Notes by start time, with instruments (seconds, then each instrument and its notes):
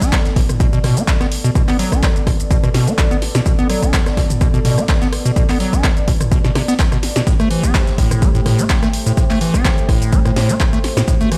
Already playing: analog synth pad B3 A4 D5
0.02 acid bass D4, kick, closed hi-hat, shaker
0.12 acid bass B2, kick, cross-stick, snare, clap, closed hi-hat, shaker
0.25 snare, closed hi-hat, shaker
0.35 acid bass B2, kick, snare, closed hi-hat, open hi-hat
0.49 cross-stick, closed hi-hat, mid tom, shaker
0.60 acid bass B2, kick, closed hi-hat, shaker
0.73 acid bass B2, closed hi-hat, shaker
0.83 acid bass B2, cross-stick, snare, closed hi-hat, mid tom, open hi-hat
0.97 acid bass D4, closed hi-hat, shaker
1.08 kick, snare, clap, closed hi-hat, shaker
1.20 acid bass B3, cross-stick, snare, closed hi-hat, shaker
1.32 closed hi-hat, open hi-hat
1.44 acid bass B2, closed hi-hat, shaker
1.55 acid bass B2, kick, cross-stick, closed hi-hat, shaker
1.68 acid bass B3, clap, open hi-hat, shaker
1.79 acid bass F#3, snare, closed hi-hat, open hi-hat
1.92 acid bass D4, kick, cross-stick, shaker
2.03 acid bass B2, kick, snare, clap, closed hi-hat, shaker
2.16 closed hi-hat, shaker
2.27 acid bass B2, kick, cross-stick, closed hi-hat, open hi-hat
2.40 closed hi-hat, shaker
2.51 acid bass B2, kick, closed hi-hat, shaker
2.63 acid bass B2, cross-stick, closed hi-hat, shaker
2.74 acid bass B2, snare, closed hi-hat, open hi-hat
2.87 acid bass D4, closed hi-hat, shaker
2.98 kick, cross-stick, clap, closed hi-hat, shaker
3.11 acid bass B3, closed hi-hat, shaker
3.22 snare, open hi-hat
3.35 acid bass B2, cross-stick, snare, closed hi-hat, shaker
3.46 acid bass B2, kick, closed hi-hat, shaker
3.59 acid bass B3, closed hi-hat, shaker
3.70 acid bass F#3, cross-stick, closed hi-hat, open hi-hat
3.83 acid bass D4, kick, shaker
3.93 acid bass B2, kick, snare, clap, closed hi-hat, shaker
4.06 cross-stick, snare, closed hi-hat, shaker
4.17 acid bass B2, kick, snare, closed hi-hat, open hi-hat
4.30 closed hi-hat, mid tom, shaker
4.41 acid bass B2, kick, cross-stick, closed hi-hat, shaker
4.54 acid bass B2, closed hi-hat, shaker
4.65 acid bass B2, snare, closed hi-hat, mid tom, open hi-hat
4.78 acid bass D4, cross-stick, closed hi-hat, shaker
4.89 kick, snare, clap, closed hi-hat, shaker
5.01 acid bass B3, snare, closed hi-hat, shaker
5.12 cross-stick, closed hi-hat, open hi-hat
5.25 acid bass B2, shaker
5.36 acid bass B2, kick, closed hi-hat, shaker
5.49 acid bass B3, cross-stick, clap, open hi-hat, shaker
5.60 acid bass F#3, snare, closed hi-hat, open hi-hat
5.73 acid bass D4, kick, closed hi-hat, shaker
5.83 acid bass B2, kick, cross-stick, snare, clap, closed hi-hat, shaker
5.97 closed hi-hat, shaker
6.08 acid bass B2, kick, closed hi-hat, open hi-hat
6.21 cross-stick, closed hi-hat, mid tom, shaker
6.31 acid bass B2, kick, closed hi-hat, shaker
6.45 acid bass B2, snare, closed hi-hat, shaker
6.55 acid bass C3, cross-stick, snare, closed hi-hat, open hi-hat
6.68 acid bass B3, snare, closed hi-hat, shaker
6.79 kick, snare, clap, closed hi-hat, shaker
6.92 acid bass B2, cross-stick, closed hi-hat, shaker
7.02 snare, closed hi-hat, open hi-hat
7.16 acid bass B2, snare, shaker
7.27 acid bass A2, analog synth pad A3 G4 C5, kick, closed hi-hat, shaker
7.40 acid bass A3, cross-stick, closed hi-hat, shaker
7.51 acid bass E3, closed hi-hat, open hi-hat
7.64 acid bass C4, kick, shaker
7.74 acid bass A2, kick, cross-stick, snare, clap, closed hi-hat, shaker
7.87 snare, closed hi-hat, shaker
7.98 acid bass A2, kick, snare, closed hi-hat, open hi-hat
8.11 cross-stick, closed hi-hat, mid tom, shaker
8.22 acid bass A3, kick, closed hi-hat, shaker
8.35 acid bass A2, closed hi-hat, shaker
8.46 acid bass A2, cross-stick, snare, closed hi-hat, mid tom, open hi-hat
8.59 acid bass C4, closed hi-hat, shaker
8.69 kick, snare, clap, closed hi-hat, shaker
8.82 acid bass A3, cross-stick, snare, closed hi-hat, shaker
8.93 closed hi-hat, open hi-hat
9.06 acid bass A2, closed hi-hat, shaker
9.17 acid bass A2, kick, cross-stick, closed hi-hat, shaker
9.30 acid bass A3, clap, open hi-hat, shaker
9.40 acid bass E3, snare, closed hi-hat, open hi-hat
9.54 acid bass C4, kick, cross-stick, shaker
9.64 acid bass A2, kick, snare, clap, closed hi-hat, shaker
9.78 closed hi-hat, shaker
9.89 acid bass A2, kick, cross-stick, closed hi-hat, open hi-hat
10.02 closed hi-hat, shaker
10.13 acid bass A3, kick, closed hi-hat, shaker
10.25 acid bass A2, cross-stick, closed hi-hat, shaker
10.36 acid bass A2, snare, closed hi-hat, open hi-hat
10.49 acid bass C4, closed hi-hat, shaker
10.60 kick, cross-stick, clap, closed hi-hat, shaker
10.73 acid bass A3, closed hi-hat, shaker
10.84 snare, open hi-hat
10.97 acid bass A2, cross-stick, snare, closed hi-hat, shaker
11.08 acid bass A2, analog synth pad F#4, kick, closed hi-hat, shaker
11.21 acid bass A3, closed hi-hat, shaker
11.31 acid bass E3, cross-stick, closed hi-hat, open hi-hat